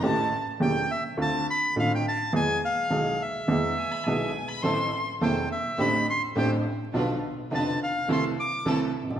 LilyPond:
<<
  \new Staff \with { instrumentName = "Violin" } { \time 4/4 \key a \minor \tempo 4 = 104 a''8. r2. r16 | r2 r8 gis''16 b''16 gis''8. b''16 | c'''8. r2. r16 | r1 | }
  \new Staff \with { instrumentName = "Bandoneon" } { \time 4/4 \key a \minor r4 g''8 e''8 a''8 b''8 f''16 g''16 a''8 | gis''8 f''4 e''2 r8 | r4 g''8 e''8 b''8 c'''8 g''8 r8 | r4 a''8 f''8 c'''8 d'''8 a''8 r8 | }
  \new Staff \with { instrumentName = "String section" } { \time 4/4 \key a \minor r1 | r1 | <e' a' c''>8 r8 <e' a' c''>8 r8 <a d' g' c''>8 r8 <a d' g' c''>8 r8 | <d' f' b'>8 r8 <d' f' b'>8 r8 <c' e' a'>8 r8 <c' e' a'>8 r8 | }
  \new Staff \with { instrumentName = "Upright piano" } { \clef bass \time 4/4 \key a \minor <a,, a, e a cis' g'>8 r8 <e,, e, e a cis' g'>8 r8 <d, d a c' f'>8 r8 <a,, a, d a c' f'>8 r8 | <e, e gis b gis'>8 r8 <b,, b, e gis b gis'>8 r8 <e, e gis b gis'>8 r8 <b,, b, e gis b gis'>8 r8 | <a,, a, e a c' a'>8 r8 <e,, e, e a c' a'>8 r8 <a,, a, d a c' g'>8 r8 <a,, a, d a c' g'>8 r8 | <b,, b, d f b f'>8 r8 <f,, f, d f b f'>8 r8 <c, c e a e'>8 r8 <c, c e a e'>8 r32 gis,,32 a,,32 bes,,32 | }
>>